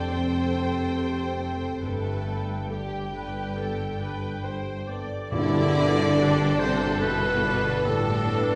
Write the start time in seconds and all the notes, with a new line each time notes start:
Already playing: F1 F2 C3 G3 C4 G4 A4 C5 G5
0.13 C3 C4 C5
0.35 C4
0.55 C3 A4
0.77 C5
0.97 G4 A4 G5
1.19 C5
1.40 C4 A4
1.62 G4
1.83 G1 G2 A3 A4 B4 G5
2.05 A3
2.26 B3 A4
2.48 B5
2.70 G3 G4 A4 G5
2.92 D5
3.13 D3 A4 B4
3.36 G4
3.57 D3 B3 A4
3.79 D4
4.01 D3 A4 B4
4.44 G4 A4 C5 G5
4.88 B3 A4 D5
5.11 G4
5.31 G1 G2 D3 E4 A4 D5, tam-tam
5.54 D3
5.75 G3 B3
5.97 A4
6.17 D4 G4 A4 G5
6.39 A5
6.59 C3 D3 C5
6.81 A4
7.01 G2 B2 B3 E4 B4
7.23 D3
7.44 D3 B3 D4
7.65 A4
7.85 A2 D4 G4 A4 G5
8.07 A5
8.27 B3 B4
8.48 A4